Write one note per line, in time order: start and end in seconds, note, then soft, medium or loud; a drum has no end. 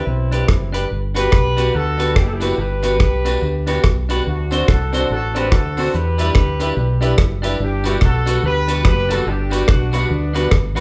0.00 0.71 C4 medium
0.00 0.71 E4 medium
0.07 0.42 B1 loud
0.32 0.45 D4 medium
0.32 0.46 G4 medium
0.32 0.46 B4 medium
0.32 closed hi-hat medium
0.48 0.85 F#1 medium
0.48 muted clean electric guitar stroke soft
0.48 kick loud
0.48 cross-stick loud
0.72 0.86 D4 medium
0.72 0.87 G4 medium
0.72 0.87 B4 medium
0.72 closed hi-hat loud
0.91 1.27 G1 medium
1.15 1.28 B3 medium
1.15 1.28 D4 medium
1.15 1.29 F#4 medium
1.15 1.29 G4 loud
1.15 1.71 G4 medium
1.15 1.29 B4 medium
1.15 1.71 B4 loud
1.15 closed hi-hat loud
1.15 tambourine medium
1.32 1.68 B1 medium
1.32 1.38 F#4 soft
1.32 1.38 G4 soft
1.32 kick loud
1.32 cross-stick medium
1.57 1.70 B3 medium
1.57 1.70 D4 medium
1.57 1.71 F#4 medium
1.57 1.71 G4 loud
1.57 1.71 B4 medium
1.57 closed hi-hat medium
1.57 tambourine medium
1.74 2.18 D2 loud
1.74 1.80 F#4 soft
1.74 2.17 F#4 medium
1.74 1.80 G4 soft
1.74 2.16 A4 loud
1.98 2.12 B3 medium
1.98 2.12 D4 medium
1.98 2.12 F#4 medium
1.98 2.13 F#4 medium
1.98 2.13 G4 medium
1.98 2.13 B4 medium
1.98 closed hi-hat medium
1.98 tambourine medium
2.16 2.52 F#1 loud
2.16 2.25 D4 medium
2.16 2.25 G4 medium
2.16 kick loud
2.16 cross-stick loud
2.27 2.31 A4 medium
2.33 2.60 E4 medium
2.33 2.59 G4 medium
2.40 2.54 B3 medium
2.40 2.54 D4 medium
2.40 2.55 F#4 medium
2.40 2.54 F#4 medium
2.40 2.55 G4 loud
2.40 2.55 B4 medium
2.40 closed hi-hat medium
2.40 tambourine medium
2.58 3.00 G1 loud
2.58 3.85 G4 medium
2.58 3.84 B4 medium
2.82 2.95 B3 medium
2.82 2.96 D4 medium
2.82 2.96 F#4 medium
2.82 2.97 F#4 medium
2.82 2.96 G4 loud
2.82 2.97 B4 medium
2.82 closed hi-hat medium
2.82 tambourine medium
2.99 3.36 B1 medium
2.99 3.05 F#4 soft
2.99 3.05 G4 soft
2.99 kick loud
2.99 cross-stick loud
3.25 3.38 B3 medium
3.25 3.38 D4 medium
3.25 3.38 F#4 medium
3.25 3.39 F#4 medium
3.25 3.38 G4 loud
3.25 3.39 B4 medium
3.25 closed hi-hat medium
3.25 tambourine medium
3.42 3.78 D2 loud
3.42 3.47 F#4 soft
3.42 3.47 G4 soft
3.67 3.80 B3 medium
3.67 3.80 D4 medium
3.67 3.81 F#4 medium
3.67 3.80 F#4 medium
3.67 3.80 G4 medium
3.67 3.81 B4 medium
3.67 closed hi-hat medium
3.67 tambourine medium
3.84 4.20 B1 loud
3.84 muted clean electric guitar stroke soft
3.84 kick loud
3.84 cross-stick loud
4.09 4.22 B3 medium
4.09 4.22 D4 medium
4.09 4.23 F#4 medium
4.09 4.22 F#4 medium
4.09 4.22 G4 medium
4.09 4.23 B4 medium
4.09 closed hi-hat loud
4.09 tambourine medium
4.27 4.62 D2 loud
4.27 4.66 D4 medium
4.27 4.66 F#4 medium
4.51 4.63 C4 medium
4.51 4.64 D4 medium
4.51 4.64 F#4 loud
4.51 4.65 F#4 medium
4.51 4.65 C5 loud
4.51 closed hi-hat loud
4.51 tambourine medium
4.68 5.04 C2 medium
4.68 4.73 D4 soft
4.68 4.92 F#4 medium
4.68 4.73 F#4 soft
4.68 4.92 A4 loud
4.68 kick loud
4.68 cross-stick loud
4.93 5.05 C4 loud
4.93 5.06 D4 medium
4.93 5.07 F#4 medium
4.93 5.06 F#4 medium
4.93 5.09 F#4 medium
4.93 5.09 A4 medium
4.93 5.07 C5 medium
4.93 closed hi-hat medium
4.93 tambourine medium
5.10 5.52 A1 loud
5.10 5.15 D4 soft
5.10 5.15 F#4 soft
5.10 5.34 F#4 medium
5.10 5.34 A4 loud
5.34 5.47 C4 medium
5.34 5.48 D4 medium
5.34 5.47 D4 medium
5.34 5.48 F#4 medium
5.34 5.49 F#4 medium
5.34 5.52 G4 medium
5.34 5.52 B4 medium
5.34 5.49 C5 medium
5.34 closed hi-hat medium
5.34 tambourine medium
5.52 5.87 D2 loud
5.52 5.57 D4 soft
5.52 5.57 F#4 soft
5.52 5.95 F#4 medium
5.52 5.94 A4 loud
5.52 kick loud
5.52 cross-stick loud
5.77 5.89 C4 medium
5.77 5.90 D4 medium
5.77 5.90 F#4 medium
5.77 5.90 F#4 loud
5.77 5.91 C5 medium
5.77 open hi-hat medium
5.77 tambourine medium
5.94 6.29 E2 medium
5.94 7.15 G4 medium
5.94 7.15 B4 loud
5.94 hi-hat pedal medium
6.18 6.31 G3 loud
6.18 6.31 D4 medium
6.18 6.31 E4 loud
6.18 6.32 G4 medium
6.18 6.33 B4 medium
6.18 closed hi-hat loud
6.18 tambourine medium
6.35 6.71 D2 medium
6.35 6.41 D4 soft
6.35 6.41 E4 soft
6.35 kick loud
6.35 cross-stick loud
6.60 6.73 G3 medium
6.60 6.73 D4 medium
6.60 6.73 E4 medium
6.60 6.74 G4 medium
6.60 6.74 B4 medium
6.60 closed hi-hat medium
6.60 tambourine medium
6.76 7.12 B1 loud
6.76 6.82 D4 soft
6.76 6.82 E4 soft
7.01 7.14 G3 medium
7.01 7.14 D4 medium
7.01 7.14 E4 loud
7.01 7.15 G4 loud
7.01 7.15 B4 medium
7.01 closed hi-hat medium
7.01 tambourine medium
7.18 7.54 F#1 medium
7.18 muted clean electric guitar stroke soft
7.18 kick loud
7.18 cross-stick loud
7.42 7.56 G3 medium
7.42 7.56 D4 medium
7.42 7.56 E4 medium
7.42 7.57 G4 medium
7.42 7.57 B4 medium
7.42 closed hi-hat loud
7.42 tambourine medium
7.60 7.95 G1 loud
7.60 7.85 D4 medium
7.60 7.86 G4 loud
7.84 7.97 G3 medium
7.84 7.98 B3 medium
7.84 7.98 D4 medium
7.84 7.98 F#4 medium
7.84 7.98 F#4 loud
7.84 7.99 B4 medium
7.84 closed hi-hat loud
7.84 tambourine medium
7.89 7.95 E4 medium
7.89 7.96 G4 medium
8.01 8.37 B1 medium
8.01 8.07 B3 soft
8.01 8.07 F#4 soft
8.01 8.42 F#4 medium
8.01 kick loud
8.01 cross-stick medium
8.05 8.43 A4 loud
8.26 8.39 G3 medium
8.26 8.39 B3 medium
8.26 8.40 D4 medium
8.26 8.40 F#4 medium
8.26 8.41 B4 medium
8.26 closed hi-hat loud
8.26 tambourine medium
8.43 8.87 D2 loud
8.43 8.49 B3 soft
8.43 8.49 F#4 soft
8.43 8.83 G4 medium
8.43 8.83 B4 loud
8.68 8.81 G3 medium
8.68 8.81 B3 medium
8.68 8.81 D4 medium
8.68 8.82 F#4 medium
8.68 8.82 B4 medium
8.68 closed hi-hat medium
8.68 tambourine medium
8.85 9.21 F#1 loud
8.85 8.91 B3 soft
8.85 8.91 F#4 soft
8.85 9.10 G4 medium
8.85 9.10 B4 loud
8.85 kick loud
8.85 cross-stick loud
9.09 9.23 G3 medium
9.09 9.23 B3 medium
9.09 9.23 D4 medium
9.09 9.23 F#4 medium
9.09 9.28 F#4 medium
9.09 9.28 A4 loud
9.09 9.24 B4 medium
9.09 closed hi-hat loud
9.09 tambourine medium
9.26 9.62 G1 medium
9.26 9.69 D4 medium
9.26 9.69 G4 medium
9.50 9.65 G3 medium
9.50 9.65 B3 medium
9.50 9.64 D4 medium
9.50 9.65 F#4 medium
9.50 9.65 B4 medium
9.50 closed hi-hat medium
9.50 tambourine medium
9.68 10.04 B1 medium
9.68 9.93 D4 medium
9.68 9.93 F#4 loud
9.68 kick loud
9.68 cross-stick medium
9.92 10.06 G3 medium
9.92 10.06 B3 medium
9.92 10.53 B3 medium
9.92 10.06 D4 medium
9.92 10.53 D4 medium
9.92 10.07 F#4 medium
9.92 10.06 F#4 loud
9.92 10.07 B4 medium
9.92 closed hi-hat medium
9.92 tambourine medium
10.10 10.46 D2 loud
10.10 10.15 B3 soft
10.10 10.15 F#4 soft
10.34 10.47 G3 medium
10.34 10.48 B3 medium
10.34 10.48 D4 medium
10.34 10.48 F#4 medium
10.34 10.49 B4 loud
10.34 closed hi-hat medium
10.34 tambourine medium
10.50 10.77 G1 loud
10.50 muted clean electric guitar stroke soft
10.50 kick loud
10.50 cross-stick loud
10.75 10.80 B1 medium
10.75 10.80 G3 medium
10.75 10.80 B3 medium
10.75 10.80 D4 medium
10.75 10.80 F#4 medium
10.75 10.80 F#4 loud
10.75 10.80 B4 loud
10.75 closed hi-hat medium
10.75 tambourine medium